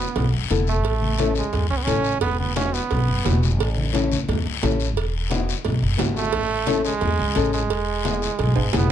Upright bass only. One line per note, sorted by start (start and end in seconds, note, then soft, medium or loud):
0.15 0.30 B1 medium
0.33 0.47 F#1 medium
0.50 0.85 E1 medium
0.85 1.40 A1 loud
1.52 1.67 E2 medium
1.70 1.84 C#2 medium
1.87 2.22 A1 loud
2.22 2.77 E1 loud
2.91 3.05 B1 medium
3.08 3.22 F#1 medium
3.25 3.59 E1 medium
3.59 4.14 A1 loud
4.28 4.42 E2 medium
4.46 4.59 C#2 medium
4.62 4.96 A1 medium
4.96 5.51 E1 loud
5.66 5.79 B1 medium
5.82 5.96 F#1 medium
6.00 6.33 G#1 medium
6.33 6.88 A1 medium
7.02 7.16 E2 medium
7.19 7.33 C#2 medium
7.36 7.70 A1 medium
7.70 8.25 E1 loud
8.39 8.53 B1 medium
8.56 8.70 G#1 medium
8.73 8.92 E1 medium